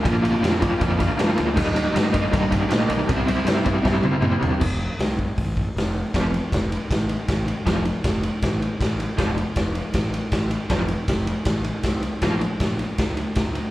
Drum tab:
CC |--------|x-------|--------|x-------|
RD |xxxxxxxx|-xxxxxxx|xxxx----|--------|
HH |--------|--------|--------|--o-o-o-|
SD |--o---o-|--o---o-|--o-o---|--o---o-|
T1 |--------|--------|-----o--|--------|
T2 |--------|--------|------o-|--------|
FT |--------|--------|-------o|--------|
BD |o--ooo--|o--ooo--|o--oo---|o--ooo--|

CC |--------|--------|--------|--------|
RD |xxxxxxxx|xxxxxxxx|xxxxxxxx|xxxxxxxx|
HH |--------|--------|--------|--------|
SD |o-o-o-o-|o-o-o-o-|o-o-o-o-|o-o-o-o-|
T1 |--------|--------|--------|--------|
T2 |--------|--------|--------|--------|
FT |--------|--------|--------|--------|
BD |o-o-o-o-|o-o-o-o-|o-o-o-o-|o-o-o-o-|

CC |--------|
RD |xxxxxxxx|
HH |--------|
SD |o-o-o-o-|
T1 |--------|
T2 |--------|
FT |--------|
BD |o-o-o-o-|